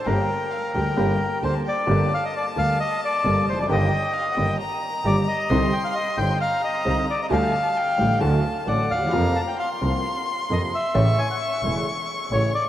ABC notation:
X:1
M:4/4
L:1/16
Q:1/4=132
K:Gm
V:1 name="Violin"
g4 f2 g6 a2 g2 | a16 | g4 f3/2 ^f/2 g2 b8 | c'8 b8 |
a4 g4 a4 ^f4 | b4 c'12 | ^c'16 |]
V:2 name="Bandoneon"
B12 c2 d2- | d2 f e d2 f2 e2 d4 c d | e8 z4 d2 e2- | e2 g f e2 g2 f2 e4 d e |
f8 z4 d2 f2- | f2 a g f2 z6 e2 =e2- | =e2 _a ^f e2 z6 ^c2 d2 |]
V:3 name="String section"
[B,DG]2 z4 [B,DG]2 [B,DG]2 z2 [B,DG]2 z2 | z16 | z16 | z16 |
z16 | z16 | z16 |]
V:4 name="Upright piano" clef=bass
[G,,,G,,D,G,B,G]2 z4 [D,,D,G,B,G]2 [G,,,G,,D,G,B,G]2 z2 [D,,D,G,B,G]2 z2 | [G,,,G,,D,G,B,G]2 z4 [D,,D,G,B,G]2 z4 [G,,,G,,D,G,B,G]2 z/2 =E,,/2 F,,/2 ^F,,/2 | [G,,,G,,E,G,B,G]2 z4 [G,,,G,,E,G,B,G]2 z4 [G,,,G,,E,G,B,G]2 z2 | [C,,C,D,G,CE]2 z4 [G,,,G,,D,G,CE]2 z4 [C,,C,D,G,CE]2 z2 |
[D,,D,G,A,G]2 z4 [A,,,A,,D,G,A,G]2 [D,,D,^F,A,^F]2 z2 [A,,,A,,D,F,A,F]2 z/2 D,,/2 E,,/2 =E,,/2 | [F,,C,F,B,F]2 z4 [C,,C,F,B,F]2 z4 [F,,C,F,B,F]2 z2 | [A,,,A,,^C,=E,A,=E]2 z4 [=E,,,=E,,C,E,A,E]2 z4 [A,,,A,,C,E,A,E]2 z2 |]
V:5 name="Double bass" clef=bass
G,,,2 z4 D,,2 G,,,2 z2 D,,2 z2 | G,,,2 z4 D,,2 z4 G,,,2 F,,,2 | G,,,2 z4 G,,,2 z4 G,,,2 z2 | C,,2 z4 G,,,2 z4 C,,2 z2 |
D,,2 z4 A,,,2 D,,2 z2 A,,,2 E,,2 | F,,2 z4 C,,2 z4 F,,2 z2 | A,,,2 z4 =E,,,2 z4 A,,,2 z2 |]